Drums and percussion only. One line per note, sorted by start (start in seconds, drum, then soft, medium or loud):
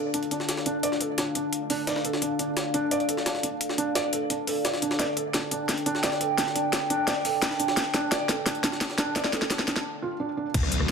0.14 closed hi-hat medium
0.23 closed hi-hat soft
0.31 closed hi-hat medium
0.40 snare soft
0.49 snare loud
0.49 closed hi-hat medium
0.57 snare soft
0.66 closed hi-hat medium
0.83 closed hi-hat loud
0.83 closed hi-hat medium
0.92 snare soft
1.01 closed hi-hat medium
1.18 snare loud
1.18 closed hi-hat medium
1.35 closed hi-hat medium
1.53 closed hi-hat medium
1.70 closed hi-hat medium
1.70 open hi-hat medium
1.87 snare loud
1.87 closed hi-hat medium
1.96 snare medium
2.05 closed hi-hat medium
2.13 snare medium
2.22 closed hi-hat medium
2.39 closed hi-hat medium
2.57 snare loud
2.57 closed hi-hat medium
2.74 closed hi-hat medium
2.91 closed hi-hat medium
3.00 closed hi-hat soft
3.09 closed hi-hat medium
3.17 snare soft
3.26 snare loud
3.26 closed hi-hat medium
3.35 snare soft
3.43 closed hi-hat medium
3.61 closed hi-hat medium
3.69 snare soft
3.78 closed hi-hat medium
3.95 snare loud
3.95 closed hi-hat loud
3.95 closed hi-hat medium
4.13 closed hi-hat medium
4.30 closed hi-hat medium
4.47 closed hi-hat medium
4.47 open hi-hat medium
4.65 snare loud
4.65 closed hi-hat medium
4.74 snare medium
4.82 closed hi-hat medium
4.91 snare medium
4.99 snare soft
4.99 closed hi-hat medium
5.17 closed hi-hat medium
5.34 snare soft
5.34 snare loud
5.34 closed hi-hat medium
5.51 closed hi-hat medium
5.69 snare medium
5.69 closed hi-hat medium
5.78 closed hi-hat soft
5.86 closed hi-hat medium
5.95 snare soft
6.03 snare loud
6.03 snare medium
6.03 closed hi-hat medium
6.12 snare soft
6.21 closed hi-hat medium
6.38 snare medium
6.38 closed hi-hat medium
6.38 closed hi-hat loud
6.47 snare soft
6.56 closed hi-hat medium
6.73 snare medium
6.73 snare loud
6.73 closed hi-hat medium
6.73 closed hi-hat loud
6.90 closed hi-hat medium
7.08 snare medium
7.08 closed hi-hat medium
7.25 closed hi-hat medium
7.25 open hi-hat medium
7.42 snare loud
7.42 snare medium
7.42 closed hi-hat medium
7.51 snare medium
7.60 closed hi-hat medium
7.68 snare medium
7.77 snare medium
7.77 closed hi-hat medium
7.77 closed hi-hat loud
7.94 snare medium
7.94 closed hi-hat medium
8.12 snare loud
8.12 snare medium
8.12 closed hi-hat medium
8.12 closed hi-hat loud
8.29 snare medium
8.29 closed hi-hat medium
8.46 snare medium
8.46 closed hi-hat medium
8.46 closed hi-hat loud
8.55 closed hi-hat soft
8.64 snare medium
8.64 closed hi-hat medium
8.72 snare soft
8.81 snare medium
8.81 snare loud
8.81 closed hi-hat medium
8.90 snare soft
8.98 snare medium
8.98 closed hi-hat medium
9.16 snare loud
9.16 closed hi-hat medium
9.16 closed hi-hat loud
9.24 snare soft
9.24 snare medium
9.33 snare loud
9.33 closed hi-hat medium
9.42 snare medium
9.50 snare loud
9.50 snare medium
9.50 closed hi-hat loud
9.59 snare medium
9.68 snare loud
9.68 closed hi-hat medium
9.76 snare medium
10.54 kick loud
10.54 closed hi-hat loud
10.54 closed hi-hat medium
10.54 crash loud
10.63 cross-stick soft
10.72 closed hi-hat medium
10.80 cross-stick soft